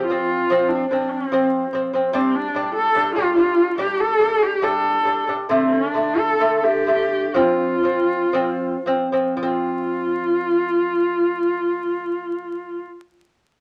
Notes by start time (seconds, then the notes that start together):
0.06 F3 F4
0.11 C4
0.50 F3 C4
0.69 D4
0.90 F3 C4 D4
1.11 C4
1.32 F3 C4
1.73 F3 C4
1.93 F3 C4
2.12 G3 C4 D4
2.35 D4
2.54 G3 D4
2.75 A4
2.95 G3 D4
3.15 G3 D4 F4
3.36 G3 D4 F4
3.78 G3 D4 G4
4.00 A4
4.19 G3 D4
4.42 G4
4.62 G3 D4 A4
5.05 G3 D4
5.27 G3 D4
5.49 D3 A3 C4
5.73 C#4
5.90 D4
5.94 D3 A3
6.18 A4
6.40 D3 A3
6.56 A4
6.63 D3 A3 G4
6.87 D3 A3
7.34 F3 C4 F4
7.83 F3 C4
8.33 F3 C4
8.86 F3 C4
9.12 F3 C4
9.37 F3 F4
9.43 C4